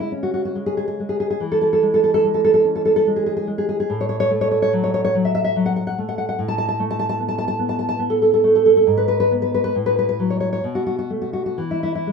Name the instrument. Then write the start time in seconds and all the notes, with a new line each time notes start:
nylon-string guitar
Already playing: C#3 G#3
0.00 E4
0.12 C#4
0.23 F#4
0.34 F#4
0.45 F#4
0.55 G#3
0.66 G#4
0.77 G#4
0.88 G#4
1.00 G#3
1.09 G#4
1.20 G#4
1.30 G#4
1.40 E3
1.52 A4
1.61 A4
1.73 A4
1.83 G#3
1.94 A4
2.04 A4
2.14 A4
2.24 G#3
2.34 A4
2.44 A4
2.54 A4
2.64 C#4
2.75 A4
2.85 A4
2.96 A4
3.07 G#3
3.16 G#4
3.26 G#4
3.37 G#4
3.47 G#3
3.58 G#4
3.69 G#4
3.80 G#4
3.90 A2
4.01 C#5
4.09 C#5
4.20 C#5
4.31 A3
4.41 C#5
4.51 C#5
4.62 C#5
4.73 F#3
4.84 C#5
4.94 C#5
5.04 C#5
5.15 F#3
5.25 E5
5.35 E5
5.44 E5
5.56 F#3
5.66 F#5
5.76 F#5
5.87 F#5
5.98 A3
6.09 F#5
6.18 F#5
6.29 F#5
6.39 A2
6.48 A5
6.58 A5
6.68 A5
6.80 A3
6.90 A5
6.99 A5
7.09 A5
7.19 B3
7.28 A5
7.38 A5
7.48 A5
7.59 B3
7.69 A5
7.79 A5
7.89 A5
7.99 B3
8.10 A4
8.22 A4
8.34 A4
8.44 A3
8.55 A4
8.66 A4
8.77 A4
8.87 G#2
8.97 B4
9.08 B4
9.20 B4
9.31 B3
9.42 B4
9.54 B4
9.64 B4
9.75 A2
9.86 B4
9.99 B4
10.09 B4
10.19 F#3
10.30 C#5
10.40 C#5
10.53 C#5
10.64 B2
10.75 F#4
10.87 F#4
10.99 F#4
11.10 A3
11.22 F#4
11.33 F#4
11.46 F#4
11.58 E3
11.71 E4
11.83 E4
11.95 E4
12.07 G#3